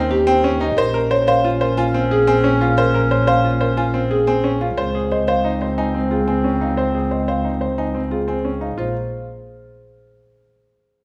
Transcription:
Already playing: D#2 C4 C#4
0.11 G4
0.27 C4 G5
0.44 C#4
0.60 D#4 D#5
0.77 A#1 C#4 A#4 C5
0.94 A#4
1.11 C5 C#5
1.27 C5 F5
1.44 F4
1.61 A#4 C5
1.77 F4 G#5
1.94 C4
2.11 G#4
2.27 C4 G#5
2.44 C#4
2.61 F4 F5
2.77 A#4 C5
2.94 A#4
3.11 C5 C#5
3.27 C5 F5
3.44 F4
3.61 A#4 C5
3.77 F4 G#5
3.94 C4
4.11 G#4
4.27 C4 G#5
4.44 C#4
4.61 F4 F5
4.78 C#2 C4 C5
4.95 G#4
5.11 C5 D#5
5.28 C5 F5
5.45 D#4
5.61 C5
5.78 D#4 G#5
5.94 C4
6.11 F4 G#4
6.28 C4 G#5
6.44 C#4
6.61 D#4 F5
6.77 C5
6.95 G#4
7.11 C5 D#5
7.28 C5 F5
7.45 D#4
7.61 C5
7.78 D#4 G#5
7.95 C4
8.11 F4 G#4
8.28 C4 G#5
8.45 C#4
8.61 D#4 F5
8.77 A#1 F4 C5

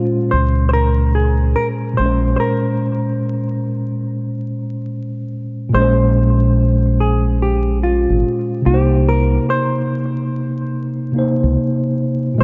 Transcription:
Already playing: A#2 G#3 C#4 F4 C5
0.31 C#2 C5
0.69 C5
0.73 A#4
1.15 G#4
1.56 A#4
1.93 A#2 C5
1.98 A#1 G#3 C#4
2.06 C5
2.36 A#4 C5
5.69 A#2
5.73 A#1 G#3 C5
5.78 C#4
5.82 C5
7.00 G#4
7.42 G4
7.83 F4
8.10 G#1
8.62 C3
8.66 C2 A#3 D#4 G4
8.74 C5
9.09 A#4
9.50 C5
11.12 C3 A#3
11.16 D#4 C5
11.43 C#2
12.34 A#2 G#3
12.41 C5

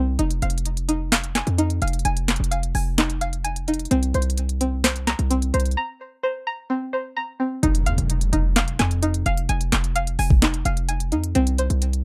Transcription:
Already playing: C2 C4 C5 A#5
0.19 F1 D#4, closed hi-hat
0.31 closed hi-hat
0.42 F1 F5, closed hi-hat
0.50 closed hi-hat
0.58 closed hi-hat
0.65 closed hi-hat
0.77 closed hi-hat
0.89 D#4, closed hi-hat
1.12 F5, snare, clap, closed hi-hat
1.24 closed hi-hat
1.35 G#5, snare, clap, closed hi-hat
1.47 F2, closed hi-hat
1.58 D#4, closed hi-hat
1.70 closed hi-hat
1.82 F1 F5, closed hi-hat
1.88 closed hi-hat
1.93 closed hi-hat
1.99 closed hi-hat
2.05 F1 G#5, closed hi-hat
2.17 closed hi-hat
2.28 snare, clap, closed hi-hat
2.36 F1, closed hi-hat
2.44 closed hi-hat
2.51 F5, closed hi-hat
2.63 closed hi-hat
2.75 F1 G#5, open hi-hat
2.98 D#4, snare, clap, closed hi-hat
3.10 closed hi-hat
3.21 F5, closed hi-hat
3.33 closed hi-hat
3.44 G#5, closed hi-hat
3.56 closed hi-hat
3.68 D#4, closed hi-hat
3.74 closed hi-hat
3.79 closed hi-hat
3.85 closed hi-hat
3.91 C2 C4, closed hi-hat
4.03 closed hi-hat
4.14 C2 C5, closed hi-hat
4.22 closed hi-hat
4.30 closed hi-hat
4.38 closed hi-hat
4.49 closed hi-hat
4.61 C4, closed hi-hat
4.84 C5, snare, clap, closed hi-hat
4.96 closed hi-hat
5.07 A#5, snare, clap, closed hi-hat
5.19 C2, closed hi-hat
5.30 C4, closed hi-hat
5.42 closed hi-hat
5.54 C2 C5, closed hi-hat
5.60 closed hi-hat
5.66 closed hi-hat
5.71 closed hi-hat
5.77 A#5
6.23 C5
6.47 A#5
6.70 C4
6.93 C5
7.16 A#5
7.40 C4
7.63 F1 D#4, closed hi-hat, impact
7.75 closed hi-hat
7.86 F2 F5, closed hi-hat
7.98 F1, closed hi-hat
8.10 closed hi-hat
8.21 closed hi-hat
8.33 F1 D#4, closed hi-hat
8.56 F5, snare, clap, closed hi-hat
8.68 closed hi-hat
8.79 F2 G#5, snare, clap, closed hi-hat
8.91 closed hi-hat
9.02 D#4, closed hi-hat
9.14 closed hi-hat
9.26 F1 F5, closed hi-hat
9.37 closed hi-hat
9.49 F1 G#5, closed hi-hat
9.61 closed hi-hat
9.72 F1, snare, clap, closed hi-hat
9.84 closed hi-hat
9.96 F5, closed hi-hat
10.07 closed hi-hat
10.19 F1 G#5, open hi-hat
10.30 kick
10.42 D#4, snare, clap, closed hi-hat
10.54 closed hi-hat
10.65 F1 F5, closed hi-hat
10.77 closed hi-hat
10.89 G#5, closed hi-hat
11.00 closed hi-hat
11.12 F2 D#4, closed hi-hat
11.24 closed hi-hat
11.35 C2 C4, closed hi-hat
11.47 closed hi-hat
11.58 C5, closed hi-hat
11.70 C2, closed hi-hat
11.82 closed hi-hat
11.93 closed hi-hat

